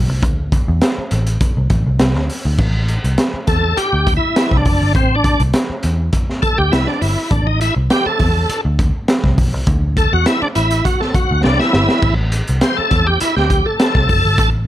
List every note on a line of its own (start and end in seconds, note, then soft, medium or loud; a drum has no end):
0.09 0.23 C2 medium
0.23 0.61 D2 loud
0.23 kick loud
0.23 closed hi-hat medium
0.52 kick loud
0.52 closed hi-hat medium
0.68 0.80 E2 medium
0.81 snare loud
0.81 closed hi-hat medium
0.98 muted picked electric bass stroke soft
1.11 1.36 A1 medium
1.11 closed hi-hat medium
1.27 closed hi-hat medium
1.41 kick loud
1.41 closed hi-hat loud
1.57 1.68 C2 medium
1.70 1.83 A1 medium
1.70 kick medium
1.70 closed hi-hat medium
1.86 1.98 C2 medium
1.99 2.16 C2 medium
1.99 snare loud
1.99 closed hi-hat medium
2.15 2.27 D2 medium
2.15 snare soft
2.30 open hi-hat medium
2.45 2.57 D2 medium
2.58 2.97 A1 loud
2.58 kick loud
2.58 crash medium
2.88 closed hi-hat medium
3.04 3.16 C2 medium
3.04 closed hi-hat medium
3.18 snare loud
3.18 closed hi-hat medium
3.34 muted picked electric bass stroke medium
3.47 3.72 E2 medium
3.47 3.78 A4 loud
3.47 kick medium
3.47 snare soft
3.47 closed hi-hat medium
3.77 4.14 G4 medium
3.77 muted picked electric bass stroke soft
3.77 closed hi-hat medium
3.93 4.18 D2 medium
4.07 kick medium
4.07 closed hi-hat medium
4.17 4.57 E4 medium
4.36 snare loud
4.36 closed hi-hat medium
4.51 4.63 C2 medium
4.51 kick medium
4.51 snare soft
4.57 4.93 D4 medium
4.65 4.79 F#1 medium
4.65 kick medium
4.65 open hi-hat medium
4.81 4.95 G1 medium
4.95 5.33 A1 loud
4.95 5.16 C4 medium
4.95 kick loud
4.95 closed hi-hat medium
5.15 5.42 D4 medium
5.24 kick loud
5.24 closed hi-hat medium
5.40 5.52 C2 medium
5.40 closed hi-hat soft
5.54 snare loud
5.54 closed hi-hat loud
5.70 muted picked electric bass stroke soft
5.83 6.09 E2 medium
5.83 closed hi-hat medium
6.13 kick loud
6.13 closed hi-hat medium
6.30 snare soft
6.42 6.59 A4 loud
6.42 muted picked electric bass stroke soft
6.42 kick loud
6.42 closed hi-hat medium
6.58 6.70 D2 medium
6.58 6.72 G4 loud
6.72 6.85 C2 medium
6.72 6.88 E4 loud
6.72 snare loud
6.72 closed hi-hat medium
6.87 7.02 D4 medium
6.87 snare soft
7.01 7.15 G1 medium
7.01 7.32 E4 medium
7.01 open hi-hat medium
7.31 7.69 A1 loud
7.31 7.47 D4 medium
7.31 kick loud
7.31 closed hi-hat medium
7.47 7.60 D#4 medium
7.61 7.75 E4 medium
7.61 closed hi-hat medium
7.76 7.88 C2 loud
7.90 8.07 G4 medium
7.90 snare loud
7.90 closed hi-hat medium
8.06 8.61 A4 loud
8.06 muted picked electric bass stroke soft
8.19 8.45 E2 medium
8.19 kick medium
8.19 snare soft
8.19 open hi-hat soft
8.49 muted picked electric bass stroke soft
8.49 closed hi-hat medium
8.65 8.90 D2 medium
8.79 kick loud
8.79 closed hi-hat medium
9.08 snare loud
9.08 closed hi-hat medium
9.24 9.38 C2 medium
9.24 kick medium
9.24 snare soft
9.38 9.54 B1 medium
9.38 kick medium
9.38 open hi-hat medium
9.54 9.65 C2 medium
9.67 10.05 D2 loud
9.67 kick loud
9.67 closed hi-hat medium
9.97 10.13 A4 loud
9.97 kick medium
9.97 closed hi-hat medium
10.13 10.24 E2 medium
10.13 10.27 F#4 loud
10.26 10.42 E4 medium
10.26 snare loud
10.26 closed hi-hat loud
10.42 10.48 D4 medium
10.42 muted picked electric bass stroke soft
10.55 10.81 A1 medium
10.55 10.86 E4 medium
10.55 closed hi-hat medium
10.71 closed hi-hat medium
10.85 11.01 F#4 medium
10.85 kick medium
10.85 closed hi-hat loud
11.00 11.15 A4 loud
11.00 snare soft
11.14 11.42 F#4 medium
11.14 muted picked electric bass stroke soft
11.14 kick medium
11.14 closed hi-hat medium
11.31 11.42 D2 medium
11.44 11.58 C2 medium
11.44 11.60 D4 medium
11.44 snare medium
11.59 12.14 E4 medium
11.59 snare soft
11.73 11.87 G1 medium
11.73 snare medium
11.89 snare medium
12.02 12.40 A1 loud
12.02 kick loud
12.02 crash medium
12.32 closed hi-hat medium
12.47 12.60 C2 loud
12.47 closed hi-hat soft
12.61 12.78 C5 medium
12.61 snare loud
12.61 closed hi-hat loud
12.77 13.07 A4 medium
12.77 muted picked electric bass stroke soft
12.91 13.16 E2 medium
12.91 kick medium
12.91 snare soft
12.91 closed hi-hat medium
13.07 13.20 G4 loud
13.20 13.35 E4 medium
13.20 muted picked electric bass stroke soft
13.20 closed hi-hat loud
13.36 13.61 D2 medium
13.36 13.67 G4 loud
13.36 snare soft
13.50 kick medium
13.50 closed hi-hat medium
13.66 14.50 A4 loud
13.80 snare loud
13.80 closed hi-hat medium
13.95 14.07 C2 medium
13.95 kick medium
13.95 snare soft
14.09 14.22 F#1 medium
14.09 kick medium
14.09 open hi-hat medium
14.25 14.38 G1 medium
14.38 14.67 A1 loud
14.38 kick loud
14.38 closed hi-hat medium